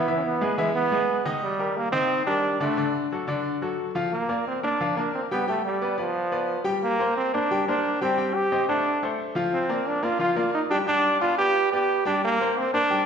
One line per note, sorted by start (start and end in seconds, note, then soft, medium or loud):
0.00 0.16 B3 medium
0.08 0.35 E3 medium
0.08 0.35 E4 medium
0.08 0.35 E5 medium
0.17 0.26 C#4 medium
0.25 0.60 B3 medium
0.41 0.55 G#3 medium
0.41 0.55 G#4 medium
0.41 0.55 B4 medium
0.58 0.85 E3 medium
0.58 0.75 G#3 medium
0.58 0.86 E4 medium
0.58 0.86 E5 medium
0.75 1.22 B3 loud
0.92 1.19 G#3 medium
0.92 1.19 G#4 medium
0.92 1.20 B4 medium
1.25 1.53 D#3 medium
1.25 1.53 D#4 loud
1.25 1.53 D#5 medium
1.43 1.78 G3 loud
1.59 1.87 G3 medium
1.59 1.87 G4 medium
1.59 1.87 A#4 medium
1.77 1.92 A#3 loud
1.92 2.20 D#3 medium
1.92 2.24 C4 loud
1.92 2.20 D#4 medium
1.92 2.21 D#5 medium
2.27 2.54 G3 medium
2.27 2.58 D4 loud
2.27 2.54 G4 medium
2.27 2.55 A#4 medium
2.60 2.74 D3 medium
2.60 2.92 A3 loud
2.60 2.74 D4 medium
2.60 2.74 D5 medium
2.77 3.05 D3 medium
2.77 3.05 D4 medium
2.77 3.05 D5 medium
3.12 3.25 F#3 medium
3.12 3.26 F#4 medium
3.12 3.26 A4 medium
3.27 3.55 D3 medium
3.27 3.55 D4 medium
3.27 3.56 D5 medium
3.62 3.89 F#3 medium
3.62 3.90 F#4 medium
3.62 3.90 A4 medium
3.95 4.09 F3 medium
3.95 4.09 F4 medium
3.95 4.09 F5 medium
4.12 4.44 A#3 medium
4.29 4.57 A#3 medium
4.29 4.57 A#4 medium
4.29 4.57 D5 medium
4.48 4.63 C4 medium
4.63 4.77 A#3 medium
4.63 4.95 D4 medium
4.63 4.77 A#4 medium
4.63 4.77 D5 medium
4.81 4.94 F3 medium
4.81 4.94 F4 medium
4.81 4.94 F5 medium
4.97 5.25 A#3 medium
4.97 5.13 D4 medium
4.97 5.25 A#4 medium
4.97 5.25 D5 medium
5.15 5.22 C4 medium
5.31 5.45 G3 medium
5.31 5.47 B3 medium
5.31 5.45 G4 medium
5.31 5.45 G5 medium
5.47 5.75 G3 medium
5.47 5.64 A3 medium
5.47 5.75 G4 medium
5.47 5.76 G5 medium
5.65 5.96 G3 medium
5.81 5.95 B3 medium
5.81 5.95 B4 medium
5.81 5.96 D5 medium
5.97 6.62 F3 medium
5.97 6.25 B3 medium
5.97 6.26 B4 medium
5.97 6.26 D5 medium
6.32 6.59 B3 medium
6.32 6.60 B4 medium
6.32 6.60 D5 medium
6.64 6.93 G3 medium
6.64 6.93 G4 medium
6.64 6.93 G5 medium
6.83 7.14 A#3 loud
6.99 7.27 A#3 medium
6.99 7.28 A#4 medium
6.99 7.28 C5 medium
7.17 7.33 C4 loud
7.34 7.47 A#3 medium
7.34 7.65 D4 loud
7.34 7.48 A#4 medium
7.34 7.48 C5 medium
7.51 7.64 G3 medium
7.51 7.65 G4 medium
7.51 7.65 G5 medium
7.68 7.96 A#3 medium
7.68 7.99 D4 loud
7.68 7.96 A#4 medium
7.68 7.96 C5 medium
8.01 8.15 G3 medium
8.01 8.37 C4 loud
8.01 8.15 G4 medium
8.01 8.16 G5 medium
8.18 8.46 G3 medium
8.18 8.46 G4 medium
8.18 8.46 G5 medium
8.35 8.68 G4 loud
8.52 8.66 C4 medium
8.52 8.66 C5 medium
8.52 8.66 D#5 medium
8.69 8.96 A3 medium
8.69 9.07 D4 loud
8.69 8.96 A4 medium
8.69 8.97 C5 medium
9.03 9.30 A3 medium
9.03 9.30 A4 medium
9.03 9.31 C5 medium
9.35 9.63 F3 medium
9.35 9.64 F4 medium
9.35 9.64 F5 medium
9.54 9.88 C4 loud
9.69 9.97 A#3 medium
9.69 9.97 A#4 medium
9.69 9.98 D5 medium
9.87 10.05 D4 medium
10.03 10.17 A#3 medium
10.03 10.20 F4 loud
10.03 10.17 A#4 medium
10.03 10.17 D5 medium
10.19 10.34 F3 medium
10.19 10.34 F4 medium
10.19 10.36 F4 loud
10.19 10.34 F5 medium
10.36 10.65 A#3 medium
10.36 10.54 F4 medium
10.36 10.65 A#4 medium
10.36 10.65 D5 medium
10.54 10.62 D#4 medium
10.70 10.85 G3 medium
10.70 10.78 D4 loud
10.70 10.85 G4 medium
10.70 10.85 G5 medium
10.87 11.15 G3 medium
10.87 11.19 D4 loud
10.87 11.15 G4 medium
10.87 11.16 G5 medium
11.21 11.35 B3 medium
11.21 11.37 F4 loud
11.21 11.36 B4 medium
11.21 11.36 D5 medium
11.38 11.67 B3 medium
11.38 11.70 G4 loud
11.38 11.67 B4 medium
11.38 11.67 D5 medium
11.72 12.01 B3 medium
11.72 12.04 G4 loud
11.72 12.01 B4 medium
11.72 12.01 D5 medium
12.05 12.33 G3 loud
12.05 12.22 D4 loud
12.05 12.34 G4 medium
12.05 12.34 G5 medium
12.25 12.60 A#3 loud
12.39 12.67 A#3 medium
12.39 12.68 A#4 medium
12.39 12.68 C5 medium
12.58 12.73 C4 loud
12.74 12.88 A#3 medium
12.74 13.05 D4 loud
12.74 12.88 A#4 medium
12.74 12.88 C5 medium
12.90 13.04 G3 medium
12.90 13.04 G4 medium
12.90 13.05 G5 medium